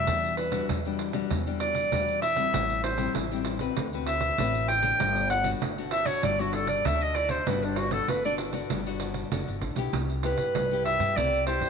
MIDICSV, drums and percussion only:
0, 0, Header, 1, 2, 480
1, 0, Start_track
1, 0, Key_signature, 1, "major"
1, 0, Tempo, 616459
1, 57, Time_signature, 4, 2, 24, 8
1, 9108, End_track
2, 0, Start_track
2, 0, Title_t, "Pandeiro"
2, 56, Note_on_c, 9, 54, 82
2, 134, Note_off_c, 9, 54, 0
2, 186, Note_on_c, 9, 54, 34
2, 264, Note_off_c, 9, 54, 0
2, 291, Note_on_c, 9, 54, 65
2, 369, Note_off_c, 9, 54, 0
2, 403, Note_on_c, 9, 54, 60
2, 481, Note_off_c, 9, 54, 0
2, 538, Note_on_c, 9, 54, 84
2, 616, Note_off_c, 9, 54, 0
2, 665, Note_on_c, 9, 54, 32
2, 742, Note_off_c, 9, 54, 0
2, 771, Note_on_c, 9, 54, 64
2, 848, Note_off_c, 9, 54, 0
2, 881, Note_on_c, 9, 54, 58
2, 959, Note_off_c, 9, 54, 0
2, 1015, Note_on_c, 9, 54, 81
2, 1093, Note_off_c, 9, 54, 0
2, 1144, Note_on_c, 9, 54, 33
2, 1222, Note_off_c, 9, 54, 0
2, 1247, Note_on_c, 9, 54, 70
2, 1325, Note_off_c, 9, 54, 0
2, 1359, Note_on_c, 9, 54, 61
2, 1437, Note_off_c, 9, 54, 0
2, 1496, Note_on_c, 9, 54, 82
2, 1573, Note_off_c, 9, 54, 0
2, 1621, Note_on_c, 9, 54, 32
2, 1699, Note_off_c, 9, 54, 0
2, 1730, Note_on_c, 9, 54, 69
2, 1808, Note_off_c, 9, 54, 0
2, 1840, Note_on_c, 9, 54, 58
2, 1918, Note_off_c, 9, 54, 0
2, 1977, Note_on_c, 9, 54, 90
2, 2054, Note_off_c, 9, 54, 0
2, 2100, Note_on_c, 9, 54, 35
2, 2178, Note_off_c, 9, 54, 0
2, 2210, Note_on_c, 9, 54, 75
2, 2288, Note_off_c, 9, 54, 0
2, 2318, Note_on_c, 9, 54, 63
2, 2396, Note_off_c, 9, 54, 0
2, 2451, Note_on_c, 9, 54, 82
2, 2529, Note_off_c, 9, 54, 0
2, 2578, Note_on_c, 9, 54, 35
2, 2656, Note_off_c, 9, 54, 0
2, 2684, Note_on_c, 9, 54, 71
2, 2762, Note_off_c, 9, 54, 0
2, 2796, Note_on_c, 9, 54, 54
2, 2874, Note_off_c, 9, 54, 0
2, 2932, Note_on_c, 9, 54, 83
2, 3010, Note_off_c, 9, 54, 0
2, 3059, Note_on_c, 9, 54, 33
2, 3137, Note_off_c, 9, 54, 0
2, 3165, Note_on_c, 9, 54, 69
2, 3243, Note_off_c, 9, 54, 0
2, 3275, Note_on_c, 9, 54, 63
2, 3353, Note_off_c, 9, 54, 0
2, 3412, Note_on_c, 9, 54, 83
2, 3490, Note_off_c, 9, 54, 0
2, 3538, Note_on_c, 9, 54, 36
2, 3616, Note_off_c, 9, 54, 0
2, 3647, Note_on_c, 9, 54, 69
2, 3725, Note_off_c, 9, 54, 0
2, 3757, Note_on_c, 9, 54, 63
2, 3835, Note_off_c, 9, 54, 0
2, 3892, Note_on_c, 9, 54, 92
2, 3970, Note_off_c, 9, 54, 0
2, 4018, Note_on_c, 9, 54, 33
2, 4095, Note_off_c, 9, 54, 0
2, 4126, Note_on_c, 9, 54, 68
2, 4204, Note_off_c, 9, 54, 0
2, 4237, Note_on_c, 9, 54, 64
2, 4315, Note_off_c, 9, 54, 0
2, 4374, Note_on_c, 9, 54, 86
2, 4452, Note_off_c, 9, 54, 0
2, 4501, Note_on_c, 9, 54, 34
2, 4579, Note_off_c, 9, 54, 0
2, 4603, Note_on_c, 9, 54, 70
2, 4681, Note_off_c, 9, 54, 0
2, 4716, Note_on_c, 9, 54, 62
2, 4794, Note_off_c, 9, 54, 0
2, 4852, Note_on_c, 9, 54, 84
2, 4929, Note_off_c, 9, 54, 0
2, 4978, Note_on_c, 9, 54, 34
2, 5055, Note_off_c, 9, 54, 0
2, 5083, Note_on_c, 9, 54, 68
2, 5161, Note_off_c, 9, 54, 0
2, 5196, Note_on_c, 9, 54, 62
2, 5274, Note_off_c, 9, 54, 0
2, 5334, Note_on_c, 9, 54, 88
2, 5412, Note_off_c, 9, 54, 0
2, 5458, Note_on_c, 9, 54, 35
2, 5536, Note_off_c, 9, 54, 0
2, 5565, Note_on_c, 9, 54, 66
2, 5643, Note_off_c, 9, 54, 0
2, 5675, Note_on_c, 9, 54, 62
2, 5753, Note_off_c, 9, 54, 0
2, 5814, Note_on_c, 9, 54, 86
2, 5892, Note_off_c, 9, 54, 0
2, 5940, Note_on_c, 9, 54, 35
2, 6018, Note_off_c, 9, 54, 0
2, 6045, Note_on_c, 9, 54, 76
2, 6123, Note_off_c, 9, 54, 0
2, 6159, Note_on_c, 9, 54, 66
2, 6237, Note_off_c, 9, 54, 0
2, 6293, Note_on_c, 9, 54, 82
2, 6371, Note_off_c, 9, 54, 0
2, 6421, Note_on_c, 9, 54, 33
2, 6498, Note_off_c, 9, 54, 0
2, 6526, Note_on_c, 9, 54, 67
2, 6604, Note_off_c, 9, 54, 0
2, 6639, Note_on_c, 9, 54, 57
2, 6717, Note_off_c, 9, 54, 0
2, 6774, Note_on_c, 9, 54, 83
2, 6852, Note_off_c, 9, 54, 0
2, 6902, Note_on_c, 9, 54, 36
2, 6980, Note_off_c, 9, 54, 0
2, 7006, Note_on_c, 9, 54, 72
2, 7084, Note_off_c, 9, 54, 0
2, 7118, Note_on_c, 9, 54, 60
2, 7196, Note_off_c, 9, 54, 0
2, 7254, Note_on_c, 9, 54, 85
2, 7332, Note_off_c, 9, 54, 0
2, 7380, Note_on_c, 9, 54, 35
2, 7458, Note_off_c, 9, 54, 0
2, 7486, Note_on_c, 9, 54, 65
2, 7564, Note_off_c, 9, 54, 0
2, 7601, Note_on_c, 9, 54, 60
2, 7679, Note_off_c, 9, 54, 0
2, 7734, Note_on_c, 9, 54, 88
2, 7812, Note_off_c, 9, 54, 0
2, 7860, Note_on_c, 9, 54, 33
2, 7938, Note_off_c, 9, 54, 0
2, 7967, Note_on_c, 9, 54, 67
2, 8045, Note_off_c, 9, 54, 0
2, 8079, Note_on_c, 9, 54, 59
2, 8156, Note_off_c, 9, 54, 0
2, 8214, Note_on_c, 9, 54, 82
2, 8292, Note_off_c, 9, 54, 0
2, 8342, Note_on_c, 9, 54, 34
2, 8420, Note_off_c, 9, 54, 0
2, 8453, Note_on_c, 9, 54, 62
2, 8531, Note_off_c, 9, 54, 0
2, 8565, Note_on_c, 9, 54, 58
2, 8643, Note_off_c, 9, 54, 0
2, 8701, Note_on_c, 9, 54, 78
2, 8778, Note_off_c, 9, 54, 0
2, 8825, Note_on_c, 9, 54, 35
2, 8903, Note_off_c, 9, 54, 0
2, 8929, Note_on_c, 9, 54, 70
2, 9007, Note_off_c, 9, 54, 0
2, 9044, Note_on_c, 9, 54, 58
2, 9108, Note_off_c, 9, 54, 0
2, 9108, End_track
0, 0, End_of_file